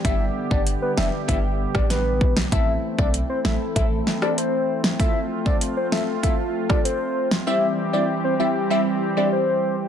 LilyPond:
<<
  \new Staff \with { instrumentName = "Soft synth lead" } { \time 4/4 \key a \minor \tempo 4 = 97 e''8 r16 d''16 r16 b'16 e''16 r16 e''16 r8 d''16 b'8. r16 | e''8 r16 d''16 r16 c''16 e''16 r16 e''16 r8 d''16 c''8. r16 | e''8 r16 d''16 r16 c''16 e''16 r16 e''16 r8 d''16 c''8. r16 | e''8 r16 d''16 r16 c''16 e''16 r16 e''16 r8 d''16 c''8. r16 | }
  \new Staff \with { instrumentName = "Synth pluck" } { \time 4/4 \key a \minor <g b d' g'>16 r8 <g b d' g'>16 r8 <g b d' g'>16 r16 <g b d' g'>8. <g b d' g'>16 r4 | <a c' e' a'>16 r8 <a c' e' a'>16 r8 <a c' e' a'>16 r16 <a c' e' a'>8. <a c' e' a'>16 r4 | <a c' f' a'>16 r8 <a c' f' a'>16 r8 <a c' f' a'>16 r16 <a c' f' a'>8. <a c' f' a'>16 r4 | <g c' e' g'>16 r8 <g c' e' g'>16 r8 <g c' e' g'>16 r16 <g c' e' g'>8. <g c' e' g'>16 r4 | }
  \new Staff \with { instrumentName = "Analog synth pad" } { \time 4/4 \key a \minor << { <g g'>1 | <e e'>1 | <f f'>1 | <g g'>1 | } \\ { <d b>1 | <a c'>1~ | <a c'>1 | <e c'>1 | } >> }
  \new Staff \with { instrumentName = "808-style bass" } { \clef bass \time 4/4 \key a \minor g,,8 r16 g,,8 r16 f,,16 r16 g,,8. a,,8. b,,8 | a,,8 r16 b,,8 r16 a,,16 r16 a,,8 r4. | r1 | r1 | }
  \new DrumStaff \with { instrumentName = "Drums" } \drummode { \time 4/4 <hh bd>8. bd16 hh8 sn8 <hh bd>8. <bd ss>16 <hh sn>8 bd16 sn16 | <hh bd>8. bd16 hh8 sn8 <hh bd>8 sn16 ss16 hh8. sn16 | <hh bd>8. bd16 hh8 sn8 <hh bd>8. <bd ss>16 hh8. sn16 | r4 r4 r4 r4 | }
>>